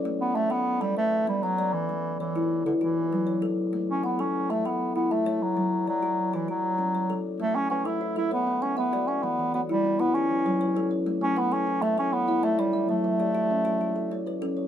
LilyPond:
<<
  \new Staff \with { instrumentName = "Kalimba" } { \time 12/8 \key a \mixolydian \tempo 4. = 131 << { d''8 r8 fis''4. r8 b'4. fis''4. | r4 cis''4. b'8 fis'4. cis''4. | r4 fis''4. e''8 a'4. e''4. | r4 d''4. cis''8 fis'4. cis''4. |
r4 fis''4. e''8 b'4. fis''4. | r4 cis''4. b'8 fis'4. cis''4. | r4 fis''4. e''8 a'4. e''4. | r4 d''4. cis''8 fis'4. cis''4. | } \\ { a4 r8 a'4 a'8 r4 b4 d''4 | e4 r8 e'4 e'8 r4 fis4 a'4 | a4 r8 a'4 a'4 r8 e'4 cis''4 | fis4 r8 fis'4 fis'4 r8 cis'4 a'4 |
a4 r8 a'4 a'8 r4 b4 d''4 | e4 r8 e'4 e'8 r4 fis4 a'4 | a4 r8 a'4 a'4 r8 e'4 cis''4 | fis4 r8 fis'4 fis'4 r8 cis'4 a'4 | } >> }
  \new Staff \with { instrumentName = "Kalimba" } { \time 12/8 \key a \mixolydian << { cis''4 r1 r4 | r1. | r1. | r1. |
r4 b'4. r8 cis''4 fis''8 e''4 fis''8~ | fis''4 fis'4. r8 g'4 cis''8 b'4 cis''8~ | cis''4 b'4. r8 cis''4 e''8 d''4 e''8~ | e''4 g'4. r8 a'4 cis''8 b'4 cis''8 | } \\ { r1. | r1. | r1. | r1. |
r8 a4 r8 e'4 r8 b4 r8 fis'4 | r8 e4 r8 b4 r8 fis4 r8 cis'4 | r8 a4 r8 e'4 r8 cis''4 r8 e'4 | r8 fis4 r8 cis'4 r8 a'4 r8 cis'4 | } >> }
  \new Staff \with { instrumentName = "Bass clarinet" } { \time 12/8 \key a \mixolydian r8 b8 a8 b4 g8 a4 g8 fis4 e8~ | e4 e4. d8 e2~ e8 r8 | r8 cis'8 b8 cis'4 a8 b4 b8 a4 fis8~ | fis4 fis4. e8 fis2~ fis8 r8 |
a8 cis'8 cis'8 e'4 e'8 b4 cis'8 b4 cis'8 | b4 b8 g4 b8 cis'2~ cis'8 r8 | r8 cis'8 b8 cis'4 a8 cis'8 b4 a8 g4 | a1~ a4 r4 | }
>>